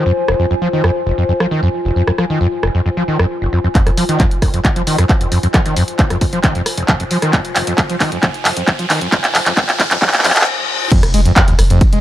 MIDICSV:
0, 0, Header, 1, 8, 480
1, 0, Start_track
1, 0, Key_signature, -4, "minor"
1, 0, Tempo, 447761
1, 181, Time_signature, 4, 2, 24, 8
1, 12874, End_track
2, 0, Start_track
2, 0, Title_t, "Ambient pad"
2, 0, Program_c, 0, 92
2, 0, Note_on_c, 0, 65, 81
2, 0, Note_on_c, 0, 72, 82
2, 0, Note_on_c, 0, 80, 76
2, 11221, Note_off_c, 0, 80, 0
2, 11222, Note_off_c, 0, 65, 0
2, 11222, Note_off_c, 0, 72, 0
2, 12874, End_track
3, 0, Start_track
3, 0, Title_t, "Acid bass"
3, 0, Program_c, 1, 38
3, 65, Note_on_c, 1, 41, 98
3, 129, Note_off_c, 1, 41, 0
3, 306, Note_on_c, 1, 29, 74
3, 369, Note_off_c, 1, 29, 0
3, 422, Note_on_c, 1, 41, 74
3, 490, Note_off_c, 1, 41, 0
3, 545, Note_on_c, 1, 41, 77
3, 583, Note_off_c, 1, 41, 0
3, 661, Note_on_c, 1, 53, 85
3, 729, Note_off_c, 1, 53, 0
3, 785, Note_on_c, 1, 51, 77
3, 881, Note_off_c, 1, 51, 0
3, 902, Note_on_c, 1, 41, 103
3, 970, Note_off_c, 1, 41, 0
3, 1141, Note_on_c, 1, 29, 81
3, 1209, Note_off_c, 1, 29, 0
3, 1265, Note_on_c, 1, 41, 74
3, 1329, Note_off_c, 1, 41, 0
3, 1381, Note_on_c, 1, 41, 76
3, 1422, Note_off_c, 1, 41, 0
3, 1505, Note_on_c, 1, 53, 77
3, 1569, Note_off_c, 1, 53, 0
3, 1621, Note_on_c, 1, 51, 84
3, 1723, Note_off_c, 1, 51, 0
3, 1745, Note_on_c, 1, 41, 102
3, 1809, Note_off_c, 1, 41, 0
3, 1985, Note_on_c, 1, 29, 76
3, 2049, Note_off_c, 1, 29, 0
3, 2102, Note_on_c, 1, 41, 82
3, 2170, Note_off_c, 1, 41, 0
3, 2226, Note_on_c, 1, 41, 76
3, 2264, Note_off_c, 1, 41, 0
3, 2342, Note_on_c, 1, 53, 75
3, 2410, Note_off_c, 1, 53, 0
3, 2466, Note_on_c, 1, 51, 78
3, 2562, Note_off_c, 1, 51, 0
3, 2582, Note_on_c, 1, 41, 102
3, 2650, Note_off_c, 1, 41, 0
3, 2821, Note_on_c, 1, 29, 78
3, 2889, Note_off_c, 1, 29, 0
3, 2945, Note_on_c, 1, 41, 78
3, 3009, Note_off_c, 1, 41, 0
3, 3062, Note_on_c, 1, 41, 80
3, 3103, Note_off_c, 1, 41, 0
3, 3185, Note_on_c, 1, 53, 76
3, 3249, Note_off_c, 1, 53, 0
3, 3302, Note_on_c, 1, 51, 76
3, 3403, Note_off_c, 1, 51, 0
3, 3425, Note_on_c, 1, 41, 101
3, 3489, Note_off_c, 1, 41, 0
3, 3665, Note_on_c, 1, 29, 77
3, 3729, Note_off_c, 1, 29, 0
3, 3781, Note_on_c, 1, 41, 77
3, 3849, Note_off_c, 1, 41, 0
3, 3905, Note_on_c, 1, 41, 77
3, 3943, Note_off_c, 1, 41, 0
3, 4022, Note_on_c, 1, 41, 83
3, 4089, Note_off_c, 1, 41, 0
3, 4144, Note_on_c, 1, 41, 75
3, 4183, Note_off_c, 1, 41, 0
3, 4262, Note_on_c, 1, 53, 75
3, 4329, Note_off_c, 1, 53, 0
3, 4384, Note_on_c, 1, 51, 75
3, 4481, Note_off_c, 1, 51, 0
3, 4501, Note_on_c, 1, 41, 101
3, 4569, Note_off_c, 1, 41, 0
3, 4741, Note_on_c, 1, 29, 78
3, 4809, Note_off_c, 1, 29, 0
3, 4864, Note_on_c, 1, 41, 78
3, 4929, Note_off_c, 1, 41, 0
3, 4981, Note_on_c, 1, 41, 82
3, 5022, Note_off_c, 1, 41, 0
3, 5104, Note_on_c, 1, 53, 78
3, 5169, Note_off_c, 1, 53, 0
3, 5220, Note_on_c, 1, 51, 76
3, 5323, Note_off_c, 1, 51, 0
3, 5343, Note_on_c, 1, 41, 101
3, 5408, Note_off_c, 1, 41, 0
3, 5584, Note_on_c, 1, 29, 76
3, 5649, Note_off_c, 1, 29, 0
3, 5701, Note_on_c, 1, 41, 77
3, 5769, Note_off_c, 1, 41, 0
3, 5825, Note_on_c, 1, 41, 78
3, 5864, Note_off_c, 1, 41, 0
3, 5942, Note_on_c, 1, 53, 81
3, 6010, Note_off_c, 1, 53, 0
3, 6065, Note_on_c, 1, 51, 75
3, 6161, Note_off_c, 1, 51, 0
3, 6181, Note_on_c, 1, 41, 101
3, 6249, Note_off_c, 1, 41, 0
3, 6422, Note_on_c, 1, 29, 84
3, 6490, Note_off_c, 1, 29, 0
3, 6546, Note_on_c, 1, 41, 79
3, 6610, Note_off_c, 1, 41, 0
3, 6662, Note_on_c, 1, 41, 78
3, 6703, Note_off_c, 1, 41, 0
3, 6785, Note_on_c, 1, 53, 76
3, 6849, Note_off_c, 1, 53, 0
3, 6901, Note_on_c, 1, 51, 83
3, 7003, Note_off_c, 1, 51, 0
3, 7025, Note_on_c, 1, 41, 101
3, 7089, Note_off_c, 1, 41, 0
3, 7265, Note_on_c, 1, 29, 77
3, 7329, Note_off_c, 1, 29, 0
3, 7381, Note_on_c, 1, 41, 85
3, 7449, Note_off_c, 1, 41, 0
3, 7504, Note_on_c, 1, 41, 78
3, 7543, Note_off_c, 1, 41, 0
3, 7622, Note_on_c, 1, 53, 78
3, 7690, Note_off_c, 1, 53, 0
3, 7746, Note_on_c, 1, 51, 76
3, 7841, Note_off_c, 1, 51, 0
3, 7863, Note_on_c, 1, 41, 94
3, 7930, Note_off_c, 1, 41, 0
3, 8102, Note_on_c, 1, 29, 71
3, 8170, Note_off_c, 1, 29, 0
3, 8226, Note_on_c, 1, 41, 70
3, 8289, Note_off_c, 1, 41, 0
3, 8342, Note_on_c, 1, 41, 77
3, 8383, Note_off_c, 1, 41, 0
3, 8464, Note_on_c, 1, 53, 70
3, 8529, Note_off_c, 1, 53, 0
3, 8581, Note_on_c, 1, 51, 73
3, 8683, Note_off_c, 1, 51, 0
3, 8704, Note_on_c, 1, 41, 98
3, 8769, Note_off_c, 1, 41, 0
3, 8821, Note_on_c, 1, 41, 98
3, 8889, Note_off_c, 1, 41, 0
3, 9061, Note_on_c, 1, 29, 71
3, 9129, Note_off_c, 1, 29, 0
3, 9184, Note_on_c, 1, 41, 74
3, 9249, Note_off_c, 1, 41, 0
3, 9301, Note_on_c, 1, 41, 80
3, 9342, Note_off_c, 1, 41, 0
3, 9424, Note_on_c, 1, 53, 76
3, 9488, Note_off_c, 1, 53, 0
3, 9540, Note_on_c, 1, 51, 73
3, 9643, Note_off_c, 1, 51, 0
3, 9663, Note_on_c, 1, 41, 100
3, 9728, Note_off_c, 1, 41, 0
3, 9781, Note_on_c, 1, 41, 100
3, 9849, Note_off_c, 1, 41, 0
3, 10021, Note_on_c, 1, 29, 75
3, 10089, Note_off_c, 1, 29, 0
3, 10144, Note_on_c, 1, 41, 77
3, 10209, Note_off_c, 1, 41, 0
3, 10260, Note_on_c, 1, 41, 102
3, 10329, Note_off_c, 1, 41, 0
3, 10500, Note_on_c, 1, 29, 78
3, 10569, Note_off_c, 1, 29, 0
3, 10624, Note_on_c, 1, 41, 80
3, 10689, Note_off_c, 1, 41, 0
3, 10741, Note_on_c, 1, 41, 104
3, 10809, Note_off_c, 1, 41, 0
3, 10981, Note_on_c, 1, 41, 103
3, 11049, Note_off_c, 1, 41, 0
3, 11702, Note_on_c, 1, 41, 82
3, 11804, Note_off_c, 1, 41, 0
3, 11943, Note_on_c, 1, 56, 78
3, 12010, Note_off_c, 1, 56, 0
3, 12066, Note_on_c, 1, 41, 78
3, 12130, Note_off_c, 1, 41, 0
3, 12184, Note_on_c, 1, 41, 87
3, 12251, Note_off_c, 1, 41, 0
3, 12307, Note_on_c, 1, 39, 81
3, 12370, Note_off_c, 1, 39, 0
3, 12423, Note_on_c, 1, 29, 80
3, 12463, Note_off_c, 1, 29, 0
3, 12547, Note_on_c, 1, 41, 81
3, 12642, Note_off_c, 1, 41, 0
3, 12786, Note_on_c, 1, 56, 77
3, 12850, Note_off_c, 1, 56, 0
3, 12874, End_track
4, 0, Start_track
4, 0, Title_t, "Sub bass"
4, 0, Program_c, 2, 38
4, 11824, Note_on_c, 2, 29, 77
4, 11934, Note_off_c, 2, 29, 0
4, 11940, Note_on_c, 2, 29, 100
4, 12062, Note_off_c, 2, 29, 0
4, 12305, Note_on_c, 2, 29, 78
4, 12415, Note_off_c, 2, 29, 0
4, 12421, Note_on_c, 2, 29, 105
4, 12539, Note_off_c, 2, 29, 0
4, 12545, Note_on_c, 2, 29, 81
4, 12659, Note_off_c, 2, 29, 0
4, 12785, Note_on_c, 2, 29, 77
4, 12874, Note_off_c, 2, 29, 0
4, 12874, End_track
5, 0, Start_track
5, 0, Title_t, "Impact"
5, 0, Program_c, 3, 103
5, 11701, Note_on_c, 3, 60, 78
5, 12874, Note_off_c, 3, 60, 0
5, 12874, End_track
6, 0, Start_track
6, 0, Title_t, "Reverse cymbal"
6, 0, Program_c, 4, 119
6, 10740, Note_on_c, 4, 60, 78
6, 11701, Note_off_c, 4, 60, 0
6, 12874, End_track
7, 0, Start_track
7, 0, Title_t, "Riser"
7, 0, Program_c, 5, 103
7, 4021, Note_on_c, 5, 60, 78
7, 11221, Note_off_c, 5, 60, 0
7, 12874, End_track
8, 0, Start_track
8, 0, Title_t, "Drums"
8, 304, Note_on_c, 9, 37, 95
8, 411, Note_off_c, 9, 37, 0
8, 900, Note_on_c, 9, 37, 92
8, 1008, Note_off_c, 9, 37, 0
8, 1504, Note_on_c, 9, 37, 89
8, 1611, Note_off_c, 9, 37, 0
8, 2224, Note_on_c, 9, 37, 90
8, 2331, Note_off_c, 9, 37, 0
8, 2341, Note_on_c, 9, 37, 79
8, 2448, Note_off_c, 9, 37, 0
8, 2821, Note_on_c, 9, 37, 85
8, 2928, Note_off_c, 9, 37, 0
8, 3424, Note_on_c, 9, 37, 91
8, 3531, Note_off_c, 9, 37, 0
8, 4021, Note_on_c, 9, 36, 115
8, 4022, Note_on_c, 9, 39, 48
8, 4022, Note_on_c, 9, 42, 71
8, 4128, Note_off_c, 9, 36, 0
8, 4129, Note_off_c, 9, 39, 0
8, 4129, Note_off_c, 9, 42, 0
8, 4144, Note_on_c, 9, 37, 64
8, 4144, Note_on_c, 9, 42, 69
8, 4251, Note_off_c, 9, 37, 0
8, 4251, Note_off_c, 9, 42, 0
8, 4261, Note_on_c, 9, 46, 99
8, 4368, Note_off_c, 9, 46, 0
8, 4384, Note_on_c, 9, 42, 68
8, 4491, Note_off_c, 9, 42, 0
8, 4500, Note_on_c, 9, 39, 51
8, 4500, Note_on_c, 9, 42, 67
8, 4501, Note_on_c, 9, 36, 119
8, 4607, Note_off_c, 9, 39, 0
8, 4607, Note_off_c, 9, 42, 0
8, 4609, Note_off_c, 9, 36, 0
8, 4624, Note_on_c, 9, 42, 64
8, 4731, Note_off_c, 9, 42, 0
8, 4740, Note_on_c, 9, 37, 63
8, 4740, Note_on_c, 9, 46, 106
8, 4741, Note_on_c, 9, 36, 60
8, 4847, Note_off_c, 9, 37, 0
8, 4847, Note_off_c, 9, 46, 0
8, 4849, Note_off_c, 9, 36, 0
8, 4864, Note_on_c, 9, 42, 68
8, 4971, Note_off_c, 9, 42, 0
8, 4981, Note_on_c, 9, 36, 116
8, 4981, Note_on_c, 9, 39, 53
8, 4981, Note_on_c, 9, 42, 69
8, 5088, Note_off_c, 9, 39, 0
8, 5088, Note_off_c, 9, 42, 0
8, 5089, Note_off_c, 9, 36, 0
8, 5104, Note_on_c, 9, 42, 67
8, 5211, Note_off_c, 9, 42, 0
8, 5220, Note_on_c, 9, 46, 105
8, 5328, Note_off_c, 9, 46, 0
8, 5343, Note_on_c, 9, 37, 62
8, 5343, Note_on_c, 9, 42, 69
8, 5451, Note_off_c, 9, 37, 0
8, 5451, Note_off_c, 9, 42, 0
8, 5460, Note_on_c, 9, 39, 56
8, 5460, Note_on_c, 9, 42, 69
8, 5461, Note_on_c, 9, 36, 117
8, 5567, Note_off_c, 9, 39, 0
8, 5567, Note_off_c, 9, 42, 0
8, 5569, Note_off_c, 9, 36, 0
8, 5583, Note_on_c, 9, 42, 72
8, 5690, Note_off_c, 9, 42, 0
8, 5700, Note_on_c, 9, 46, 104
8, 5807, Note_off_c, 9, 46, 0
8, 5824, Note_on_c, 9, 42, 69
8, 5931, Note_off_c, 9, 42, 0
8, 5940, Note_on_c, 9, 37, 65
8, 5940, Note_on_c, 9, 39, 60
8, 5940, Note_on_c, 9, 42, 72
8, 5941, Note_on_c, 9, 36, 119
8, 6047, Note_off_c, 9, 37, 0
8, 6047, Note_off_c, 9, 39, 0
8, 6047, Note_off_c, 9, 42, 0
8, 6048, Note_off_c, 9, 36, 0
8, 6063, Note_on_c, 9, 42, 69
8, 6171, Note_off_c, 9, 42, 0
8, 6180, Note_on_c, 9, 46, 106
8, 6287, Note_off_c, 9, 46, 0
8, 6303, Note_on_c, 9, 42, 68
8, 6410, Note_off_c, 9, 42, 0
8, 6419, Note_on_c, 9, 39, 63
8, 6419, Note_on_c, 9, 42, 70
8, 6421, Note_on_c, 9, 36, 122
8, 6527, Note_off_c, 9, 39, 0
8, 6527, Note_off_c, 9, 42, 0
8, 6529, Note_off_c, 9, 36, 0
8, 6543, Note_on_c, 9, 37, 61
8, 6543, Note_on_c, 9, 42, 67
8, 6650, Note_off_c, 9, 37, 0
8, 6650, Note_off_c, 9, 42, 0
8, 6660, Note_on_c, 9, 46, 107
8, 6661, Note_on_c, 9, 36, 64
8, 6767, Note_off_c, 9, 46, 0
8, 6769, Note_off_c, 9, 36, 0
8, 6783, Note_on_c, 9, 42, 69
8, 6890, Note_off_c, 9, 42, 0
8, 6899, Note_on_c, 9, 39, 65
8, 6899, Note_on_c, 9, 42, 68
8, 6901, Note_on_c, 9, 36, 117
8, 7006, Note_off_c, 9, 39, 0
8, 7006, Note_off_c, 9, 42, 0
8, 7009, Note_off_c, 9, 36, 0
8, 7023, Note_on_c, 9, 42, 68
8, 7130, Note_off_c, 9, 42, 0
8, 7139, Note_on_c, 9, 37, 63
8, 7139, Note_on_c, 9, 46, 107
8, 7247, Note_off_c, 9, 37, 0
8, 7247, Note_off_c, 9, 46, 0
8, 7263, Note_on_c, 9, 42, 68
8, 7370, Note_off_c, 9, 42, 0
8, 7379, Note_on_c, 9, 39, 71
8, 7379, Note_on_c, 9, 42, 69
8, 7381, Note_on_c, 9, 36, 124
8, 7486, Note_off_c, 9, 39, 0
8, 7486, Note_off_c, 9, 42, 0
8, 7489, Note_off_c, 9, 36, 0
8, 7503, Note_on_c, 9, 42, 69
8, 7610, Note_off_c, 9, 42, 0
8, 7619, Note_on_c, 9, 46, 107
8, 7726, Note_off_c, 9, 46, 0
8, 7743, Note_on_c, 9, 37, 63
8, 7743, Note_on_c, 9, 42, 70
8, 7850, Note_off_c, 9, 37, 0
8, 7850, Note_off_c, 9, 42, 0
8, 7859, Note_on_c, 9, 39, 74
8, 7859, Note_on_c, 9, 42, 69
8, 7861, Note_on_c, 9, 36, 123
8, 7967, Note_off_c, 9, 39, 0
8, 7967, Note_off_c, 9, 42, 0
8, 7969, Note_off_c, 9, 36, 0
8, 7983, Note_on_c, 9, 42, 68
8, 8090, Note_off_c, 9, 42, 0
8, 8100, Note_on_c, 9, 39, 75
8, 8100, Note_on_c, 9, 46, 112
8, 8207, Note_off_c, 9, 39, 0
8, 8207, Note_off_c, 9, 46, 0
8, 8224, Note_on_c, 9, 42, 68
8, 8331, Note_off_c, 9, 42, 0
8, 8340, Note_on_c, 9, 39, 81
8, 8340, Note_on_c, 9, 42, 69
8, 8341, Note_on_c, 9, 36, 127
8, 8447, Note_off_c, 9, 39, 0
8, 8447, Note_off_c, 9, 42, 0
8, 8448, Note_off_c, 9, 36, 0
8, 8464, Note_on_c, 9, 42, 67
8, 8571, Note_off_c, 9, 42, 0
8, 8580, Note_on_c, 9, 39, 79
8, 8580, Note_on_c, 9, 46, 109
8, 8581, Note_on_c, 9, 36, 66
8, 8687, Note_off_c, 9, 39, 0
8, 8687, Note_off_c, 9, 46, 0
8, 8688, Note_off_c, 9, 36, 0
8, 8704, Note_on_c, 9, 42, 70
8, 8811, Note_off_c, 9, 42, 0
8, 8820, Note_on_c, 9, 39, 82
8, 8820, Note_on_c, 9, 42, 69
8, 8821, Note_on_c, 9, 36, 126
8, 8927, Note_off_c, 9, 39, 0
8, 8927, Note_off_c, 9, 42, 0
8, 8928, Note_off_c, 9, 36, 0
8, 8943, Note_on_c, 9, 42, 69
8, 9050, Note_off_c, 9, 42, 0
8, 9060, Note_on_c, 9, 39, 84
8, 9060, Note_on_c, 9, 46, 112
8, 9167, Note_off_c, 9, 39, 0
8, 9167, Note_off_c, 9, 46, 0
8, 9183, Note_on_c, 9, 42, 71
8, 9290, Note_off_c, 9, 42, 0
8, 9300, Note_on_c, 9, 39, 90
8, 9300, Note_on_c, 9, 42, 69
8, 9301, Note_on_c, 9, 36, 122
8, 9407, Note_off_c, 9, 39, 0
8, 9407, Note_off_c, 9, 42, 0
8, 9408, Note_off_c, 9, 36, 0
8, 9423, Note_on_c, 9, 42, 71
8, 9530, Note_off_c, 9, 42, 0
8, 9540, Note_on_c, 9, 39, 91
8, 9540, Note_on_c, 9, 46, 114
8, 9647, Note_off_c, 9, 39, 0
8, 9647, Note_off_c, 9, 46, 0
8, 9663, Note_on_c, 9, 42, 70
8, 9770, Note_off_c, 9, 42, 0
8, 9780, Note_on_c, 9, 39, 97
8, 9780, Note_on_c, 9, 42, 69
8, 9781, Note_on_c, 9, 36, 126
8, 9887, Note_off_c, 9, 39, 0
8, 9887, Note_off_c, 9, 42, 0
8, 9888, Note_off_c, 9, 36, 0
8, 9904, Note_on_c, 9, 39, 85
8, 9904, Note_on_c, 9, 42, 69
8, 10011, Note_off_c, 9, 39, 0
8, 10011, Note_off_c, 9, 42, 0
8, 10021, Note_on_c, 9, 39, 92
8, 10021, Note_on_c, 9, 46, 110
8, 10128, Note_off_c, 9, 39, 0
8, 10128, Note_off_c, 9, 46, 0
8, 10145, Note_on_c, 9, 39, 84
8, 10145, Note_on_c, 9, 42, 66
8, 10252, Note_off_c, 9, 39, 0
8, 10252, Note_off_c, 9, 42, 0
8, 10261, Note_on_c, 9, 36, 125
8, 10262, Note_on_c, 9, 39, 98
8, 10262, Note_on_c, 9, 42, 67
8, 10368, Note_off_c, 9, 36, 0
8, 10369, Note_off_c, 9, 39, 0
8, 10369, Note_off_c, 9, 42, 0
8, 10385, Note_on_c, 9, 39, 85
8, 10385, Note_on_c, 9, 42, 66
8, 10492, Note_off_c, 9, 39, 0
8, 10492, Note_off_c, 9, 42, 0
8, 10501, Note_on_c, 9, 36, 64
8, 10501, Note_on_c, 9, 39, 98
8, 10501, Note_on_c, 9, 46, 110
8, 10608, Note_off_c, 9, 36, 0
8, 10609, Note_off_c, 9, 39, 0
8, 10609, Note_off_c, 9, 46, 0
8, 10624, Note_on_c, 9, 39, 90
8, 10624, Note_on_c, 9, 42, 68
8, 10732, Note_off_c, 9, 39, 0
8, 10732, Note_off_c, 9, 42, 0
8, 10741, Note_on_c, 9, 36, 121
8, 10742, Note_on_c, 9, 39, 101
8, 10742, Note_on_c, 9, 42, 64
8, 10803, Note_off_c, 9, 39, 0
8, 10803, Note_on_c, 9, 39, 92
8, 10848, Note_off_c, 9, 36, 0
8, 10849, Note_off_c, 9, 42, 0
8, 10864, Note_off_c, 9, 39, 0
8, 10864, Note_on_c, 9, 39, 92
8, 10864, Note_on_c, 9, 42, 66
8, 10923, Note_off_c, 9, 39, 0
8, 10923, Note_on_c, 9, 39, 89
8, 10972, Note_off_c, 9, 42, 0
8, 10982, Note_off_c, 9, 39, 0
8, 10982, Note_on_c, 9, 39, 107
8, 10982, Note_on_c, 9, 46, 115
8, 11043, Note_off_c, 9, 39, 0
8, 11043, Note_on_c, 9, 39, 93
8, 11089, Note_off_c, 9, 46, 0
8, 11105, Note_off_c, 9, 39, 0
8, 11105, Note_on_c, 9, 39, 95
8, 11105, Note_on_c, 9, 42, 68
8, 11163, Note_off_c, 9, 39, 0
8, 11163, Note_on_c, 9, 39, 96
8, 11212, Note_off_c, 9, 42, 0
8, 11270, Note_off_c, 9, 39, 0
8, 11701, Note_on_c, 9, 42, 73
8, 11701, Note_on_c, 9, 49, 111
8, 11701, Note_on_c, 9, 51, 80
8, 11702, Note_on_c, 9, 36, 118
8, 11808, Note_off_c, 9, 42, 0
8, 11808, Note_off_c, 9, 49, 0
8, 11808, Note_off_c, 9, 51, 0
8, 11809, Note_off_c, 9, 36, 0
8, 11825, Note_on_c, 9, 37, 63
8, 11825, Note_on_c, 9, 42, 71
8, 11825, Note_on_c, 9, 51, 58
8, 11932, Note_off_c, 9, 37, 0
8, 11932, Note_off_c, 9, 42, 0
8, 11932, Note_off_c, 9, 51, 0
8, 11942, Note_on_c, 9, 46, 107
8, 11942, Note_on_c, 9, 51, 81
8, 12049, Note_off_c, 9, 46, 0
8, 12049, Note_off_c, 9, 51, 0
8, 12065, Note_on_c, 9, 42, 71
8, 12065, Note_on_c, 9, 51, 57
8, 12172, Note_off_c, 9, 42, 0
8, 12172, Note_off_c, 9, 51, 0
8, 12181, Note_on_c, 9, 39, 127
8, 12181, Note_on_c, 9, 42, 71
8, 12181, Note_on_c, 9, 51, 81
8, 12182, Note_on_c, 9, 36, 119
8, 12289, Note_off_c, 9, 36, 0
8, 12289, Note_off_c, 9, 39, 0
8, 12289, Note_off_c, 9, 42, 0
8, 12289, Note_off_c, 9, 51, 0
8, 12305, Note_on_c, 9, 42, 69
8, 12305, Note_on_c, 9, 51, 57
8, 12412, Note_off_c, 9, 42, 0
8, 12412, Note_off_c, 9, 51, 0
8, 12421, Note_on_c, 9, 37, 62
8, 12421, Note_on_c, 9, 46, 110
8, 12421, Note_on_c, 9, 51, 80
8, 12529, Note_off_c, 9, 37, 0
8, 12529, Note_off_c, 9, 46, 0
8, 12529, Note_off_c, 9, 51, 0
8, 12545, Note_on_c, 9, 42, 71
8, 12545, Note_on_c, 9, 51, 57
8, 12652, Note_off_c, 9, 42, 0
8, 12652, Note_off_c, 9, 51, 0
8, 12661, Note_on_c, 9, 42, 69
8, 12661, Note_on_c, 9, 51, 77
8, 12662, Note_on_c, 9, 36, 118
8, 12769, Note_off_c, 9, 36, 0
8, 12769, Note_off_c, 9, 42, 0
8, 12769, Note_off_c, 9, 51, 0
8, 12785, Note_on_c, 9, 42, 70
8, 12785, Note_on_c, 9, 51, 56
8, 12874, Note_off_c, 9, 42, 0
8, 12874, Note_off_c, 9, 51, 0
8, 12874, End_track
0, 0, End_of_file